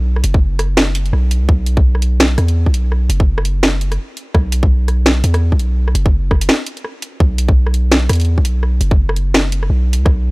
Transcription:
0.00 0.23 B1 medium
0.16 cross-stick medium
0.24 1.12 F#1 medium
0.24 closed hi-hat medium
0.34 kick loud
0.59 cross-stick medium
0.59 closed hi-hat medium
0.77 snare loud
0.95 closed hi-hat medium
1.06 closed hi-hat soft
1.13 1.43 B1 medium
1.13 cross-stick medium
1.31 closed hi-hat medium
1.41 1.48 C#2 medium
1.49 2.37 B1 loud
1.49 kick loud
1.66 closed hi-hat medium
1.77 kick loud
1.95 cross-stick medium
2.02 closed hi-hat medium
2.20 snare loud
2.38 2.68 E2 medium
2.38 cross-stick medium
2.38 closed hi-hat medium
2.48 closed hi-hat soft
2.66 3.09 B1 medium
2.66 kick medium
2.74 closed hi-hat medium
2.92 cross-stick medium
3.09 3.98 F#1 medium
3.09 closed hi-hat medium
3.20 kick loud
3.38 cross-stick medium
3.45 closed hi-hat medium
3.63 snare loud
3.81 closed hi-hat medium
3.92 cross-stick medium
3.92 closed hi-hat soft
4.17 closed hi-hat medium
4.34 5.23 B1 loud
4.34 kick loud
4.34 cross-stick medium
4.52 closed hi-hat medium
4.63 kick loud
4.88 cross-stick medium
4.88 closed hi-hat medium
5.06 snare loud
5.24 5.54 E2 medium
5.24 closed hi-hat medium
5.34 cross-stick medium
5.34 closed hi-hat soft
5.52 5.94 B1 medium
5.52 kick medium
5.59 closed hi-hat medium
5.88 cross-stick medium
5.95 6.49 F#1 medium
5.95 closed hi-hat medium
6.06 kick loud
6.31 kick medium
6.31 cross-stick medium
6.41 closed hi-hat medium
6.49 snare loud
6.66 closed hi-hat medium
6.77 closed hi-hat soft
6.84 cross-stick medium
7.02 closed hi-hat medium
7.20 8.09 B1 loud
7.20 kick loud
7.38 closed hi-hat medium
7.48 kick loud
7.67 cross-stick medium
7.74 closed hi-hat medium
7.92 snare loud
8.09 8.39 E2 loud
8.09 cross-stick medium
8.09 closed hi-hat medium
8.13 closed hi-hat medium
8.15 closed hi-hat medium
8.20 closed hi-hat soft
8.21 closed hi-hat soft
8.25 closed hi-hat soft
8.38 8.80 B1 medium
8.38 kick medium
8.45 closed hi-hat medium
8.63 cross-stick medium
8.81 9.69 F#1 medium
8.81 closed hi-hat medium
8.91 kick loud
9.09 cross-stick medium
9.16 closed hi-hat medium
9.34 snare loud
9.52 closed hi-hat medium
9.63 cross-stick medium
9.70 10.00 B1 medium
9.93 closed hi-hat medium
9.98 10.05 C#2 medium
10.06 10.31 B1 loud
10.06 kick loud
10.06 cross-stick medium

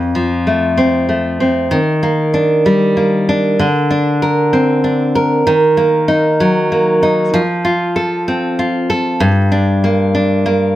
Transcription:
0.00 1.72 F2 medium
0.15 1.78 F3 soft
0.47 1.07 A3 soft
0.78 1.39 C4 medium
1.09 1.78 A3 soft
1.40 1.78 C4 medium
1.71 3.59 D#3 medium
2.03 2.96 A#3 medium
2.34 3.28 D4 medium
2.66 3.66 G3 medium
2.97 4.53 A#3 soft
3.29 3.66 D4 medium
3.59 5.46 D3 medium
3.91 4.83 D4 medium
4.22 5.15 A#4 medium
4.53 5.53 C4 medium
4.84 5.53 D4 medium
5.15 5.53 A#4 medium
5.47 7.33 D#3 medium
5.77 6.71 A#3 medium
6.08 7.01 D#4 medium
6.40 7.40 F#3 medium
6.72 7.40 A#3 medium
7.03 7.40 D#4 medium
7.34 9.23 F3 medium
7.65 8.59 F4 medium
7.96 8.89 A4 medium
8.28 9.27 C4 medium
8.59 9.51 F4 medium
8.90 9.27 A4 medium
9.20 10.76 G2 medium
9.52 10.14 D4 medium
9.84 10.45 A#3 medium
10.15 10.76 D4 medium
10.46 10.76 A#3 medium

